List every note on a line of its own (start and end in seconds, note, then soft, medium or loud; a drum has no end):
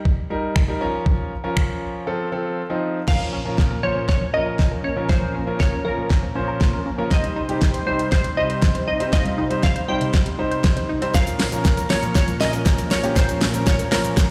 0.05 kick loud
0.30 0.59 G3 medium
0.30 0.59 D#4 medium
0.30 0.59 A#4 medium
0.56 finger snap loud
0.56 kick loud
0.68 0.81 G3 medium
0.68 0.81 D#4 medium
0.68 0.80 A#4 medium
0.81 1.31 F3 medium
0.81 1.31 C#4 medium
0.81 1.31 A#4 loud
1.06 kick loud
1.44 2.05 F3 medium
1.44 2.07 C#4 medium
1.44 2.07 A#4 medium
1.57 finger snap loud
1.57 kick loud
2.07 2.27 F3 medium
2.07 2.27 C4 medium
2.07 2.27 A4 medium
2.32 2.61 F3 medium
2.32 2.61 C4 medium
2.32 2.61 A4 medium
2.70 2.98 F3 medium
2.70 2.98 C4 medium
2.70 2.99 D#4 medium
3.07 3.15 A#2 medium
3.07 7.07 A#2 medium
3.07 3.36 F3 medium
3.07 7.07 F3 medium
3.07 3.36 C#4 medium
3.07 7.07 C#4 medium
3.07 3.36 A#4 medium
3.07 7.07 A#4 medium
3.07 3.86 F5 loud
3.07 kick loud
3.07 snare medium
3.07 crash medium
3.20 3.28 F3 medium
3.33 3.41 C#4 medium
3.45 3.74 F3 medium
3.45 3.74 C#4 medium
3.45 3.74 A#4 medium
3.58 3.66 A#3 medium
3.58 kick loud
3.58 snare medium
3.71 3.78 A#4 medium
3.83 4.21 F3 medium
3.83 3.91 F3 medium
3.83 4.22 C#4 medium
3.83 4.22 C5 medium
3.83 4.07 C#5 loud
3.96 4.04 A#2 medium
4.09 4.35 C#5 loud
4.09 kick loud
4.09 snare medium
4.21 4.29 F3 medium
4.33 4.81 F3 medium
4.33 4.81 C#4 medium
4.33 4.41 C#4 medium
4.33 4.82 A#4 medium
4.33 4.86 D#5 loud
4.46 4.54 A#4 medium
4.59 4.67 A#3 medium
4.59 kick loud
4.59 snare medium
4.72 4.79 A#4 medium
4.84 4.92 C#4 medium
4.84 4.96 C#5 medium
4.96 5.06 F3 medium
4.96 5.04 A#3 medium
4.96 5.06 C#4 medium
4.96 5.06 A#4 medium
5.09 5.17 A#2 medium
5.09 5.38 F3 medium
5.09 5.61 C5 loud
5.09 kick loud
5.09 snare medium
5.22 5.30 F3 medium
5.35 5.42 C#4 medium
5.47 5.76 F3 medium
5.47 5.76 C#4 medium
5.47 5.76 A#4 medium
5.60 5.67 A#3 medium
5.60 5.71 C#5 medium
5.60 kick loud
5.60 snare medium
5.72 5.80 A#4 medium
5.85 6.23 F3 medium
5.85 5.93 F3 medium
5.85 6.23 C#4 medium
5.85 6.82 A#4 medium
5.85 6.23 A#4 medium
5.98 6.05 A#2 medium
6.10 kick loud
6.10 snare medium
6.23 6.30 F3 medium
6.35 6.83 F3 medium
6.35 6.83 C#4 medium
6.35 6.43 C#4 medium
6.35 6.83 C5 medium
6.48 6.56 A#4 medium
6.61 6.68 A#3 medium
6.61 kick loud
6.61 snare medium
6.73 6.81 A#4 medium
6.86 6.94 C#4 medium
6.98 7.08 F3 medium
6.98 7.06 A#3 medium
6.98 7.08 C#4 medium
6.98 7.08 A#4 medium
7.11 11.10 C3 medium
7.11 7.19 C3 medium
7.11 7.40 G3 medium
7.11 11.10 G3 medium
7.11 11.10 D#4 medium
7.11 11.10 C5 medium
7.11 7.40 C5 medium
7.11 7.89 D#5 medium
7.11 kick loud
7.11 snare medium
7.11 closed hi-hat medium
7.24 7.31 G3 medium
7.24 closed hi-hat soft
7.36 7.44 D#4 medium
7.49 7.77 G3 medium
7.49 7.78 D#4 medium
7.49 7.78 G4 medium
7.49 closed hi-hat medium
7.61 7.69 C4 medium
7.61 kick loud
7.61 snare medium
7.61 closed hi-hat medium
7.74 7.82 C5 medium
7.74 closed hi-hat medium
7.86 8.25 G3 medium
7.86 7.94 G3 medium
7.86 8.25 D#4 medium
7.86 8.11 C5 medium
7.86 8.25 C5 medium
7.99 8.07 C3 medium
7.99 closed hi-hat medium
8.12 8.35 C5 medium
8.12 kick loud
8.12 snare medium
8.12 closed hi-hat medium
8.24 8.32 G3 medium
8.24 closed hi-hat medium
8.37 8.85 G3 medium
8.37 8.45 D#4 medium
8.37 8.85 D#4 medium
8.37 8.85 C5 medium
8.37 8.86 D#5 loud
8.50 8.57 C5 medium
8.50 closed hi-hat soft
8.62 8.70 C4 medium
8.62 kick loud
8.62 snare medium
8.62 closed hi-hat medium
8.75 8.83 C5 medium
8.75 closed hi-hat medium
8.88 8.95 D#4 medium
8.88 9.12 D#5 medium
9.00 9.10 G3 medium
9.00 9.08 C4 medium
9.00 9.10 D#4 medium
9.00 9.10 C5 medium
9.00 closed hi-hat medium
9.12 9.20 C3 medium
9.12 9.41 G3 medium
9.12 9.41 D#4 medium
9.12 9.41 F4 medium
9.12 9.65 D#5 loud
9.12 kick loud
9.12 snare medium
9.12 closed hi-hat medium
9.25 9.33 G3 medium
9.25 closed hi-hat soft
9.38 9.46 D#4 medium
9.50 9.79 G3 medium
9.50 9.79 D#4 medium
9.50 9.79 C5 medium
9.50 closed hi-hat medium
9.63 9.71 C4 medium
9.63 9.89 F5 loud
9.63 kick loud
9.63 snare medium
9.63 closed hi-hat medium
9.76 9.84 C5 medium
9.76 closed hi-hat medium
9.88 10.26 G3 medium
9.88 9.96 G3 medium
9.88 10.27 D#4 medium
9.88 10.27 C5 medium
9.88 10.85 G5 loud
10.01 10.09 C3 medium
10.01 closed hi-hat medium
10.13 kick loud
10.13 snare medium
10.13 closed hi-hat medium
10.26 10.34 G3 medium
10.26 closed hi-hat medium
10.39 10.86 G3 medium
10.39 10.87 D#4 medium
10.39 10.46 D#4 medium
10.39 10.87 C5 medium
10.51 10.59 C5 medium
10.51 closed hi-hat soft
10.64 10.72 C4 medium
10.64 kick loud
10.64 snare medium
10.64 closed hi-hat medium
10.77 10.84 C5 medium
10.77 closed hi-hat medium
10.89 10.97 D#4 medium
11.02 11.11 G3 medium
11.02 11.10 C4 medium
11.02 11.11 D#4 medium
11.02 11.12 C5 medium
11.02 closed hi-hat medium
11.14 11.22 A#2 medium
11.14 14.30 A#2 medium
11.14 11.43 F3 medium
11.14 14.30 F3 medium
11.14 11.43 C#4 medium
11.14 14.30 C#4 medium
11.14 14.30 A#4 medium
11.14 11.43 A#4 medium
11.14 11.92 F5 loud
11.14 kick loud
11.14 snare medium
11.14 closed hi-hat medium
11.14 shaker medium
11.27 11.35 F3 medium
11.27 closed hi-hat soft
11.27 shaker medium
11.39 11.47 C#4 medium
11.39 snare medium
11.39 open hi-hat medium
11.52 11.81 F3 medium
11.52 11.81 C#4 medium
11.52 11.81 A#4 medium
11.52 closed hi-hat medium
11.52 shaker medium
11.65 11.73 A#3 medium
11.65 kick loud
11.65 snare medium
11.65 closed hi-hat medium
11.65 shaker medium
11.77 11.85 A#4 medium
11.77 closed hi-hat medium
11.77 shaker soft
11.90 12.28 F3 medium
11.90 11.98 F3 medium
11.90 12.28 C#4 medium
11.90 12.28 A#4 medium
11.90 12.14 C#5 loud
11.90 snare medium
11.90 open hi-hat medium
12.03 12.10 A#2 medium
12.03 closed hi-hat medium
12.03 shaker soft
12.15 12.41 C#5 loud
12.15 kick loud
12.15 snare medium
12.15 closed hi-hat medium
12.15 shaker medium
12.28 12.36 F3 medium
12.28 closed hi-hat medium
12.28 shaker soft
12.40 12.88 F3 medium
12.40 12.88 C#4 medium
12.40 12.48 C#4 medium
12.40 12.88 A#4 medium
12.40 12.92 D#5 loud
12.40 snare medium
12.40 open hi-hat medium
12.40 shaker medium
12.53 12.61 A#4 medium
12.53 closed hi-hat medium
12.53 shaker soft
12.66 12.73 A#3 medium
12.66 kick loud
12.66 snare medium
12.66 closed hi-hat medium
12.66 shaker medium
12.78 12.86 A#4 medium
12.78 closed hi-hat medium
12.78 shaker soft
12.91 12.99 C#4 medium
12.91 13.17 C#5 medium
12.91 snare medium
12.91 open hi-hat medium
12.91 shaker soft
13.03 13.13 F3 medium
13.03 13.11 A#3 medium
13.03 13.13 C#4 medium
13.03 13.13 G4 medium
13.03 closed hi-hat medium
13.03 shaker soft
13.16 13.24 A#2 medium
13.16 13.45 F3 medium
13.16 13.45 C#4 medium
13.16 13.45 A#4 medium
13.16 13.68 C5 loud
13.16 kick loud
13.16 snare loud
13.16 closed hi-hat medium
13.16 shaker medium
13.29 13.36 F3 medium
13.29 closed hi-hat soft
13.29 shaker medium
13.29 shaker soft
13.41 13.49 C#4 medium
13.41 snare loud
13.41 open hi-hat medium
13.41 shaker medium
13.54 13.83 F3 medium
13.54 13.83 C#4 medium
13.54 13.83 A#4 medium
13.54 closed hi-hat medium
13.54 shaker medium
13.67 13.74 A#3 medium
13.67 13.78 C#5 medium
13.67 kick loud
13.67 snare medium
13.67 closed hi-hat medium
13.67 shaker medium
13.79 13.87 A#4 medium
13.79 closed hi-hat medium
13.79 shaker soft
13.79 shaker medium
13.92 14.30 F3 medium
13.92 13.99 F3 medium
13.92 14.30 C#4 medium
13.92 14.30 A#4 medium
13.92 snare loud
13.92 open hi-hat medium
13.92 shaker medium
14.04 14.12 A#2 medium
14.04 closed hi-hat medium
14.04 shaker soft
14.04 shaker medium
14.17 kick loud
14.17 snare loud
14.17 closed hi-hat medium
14.17 shaker medium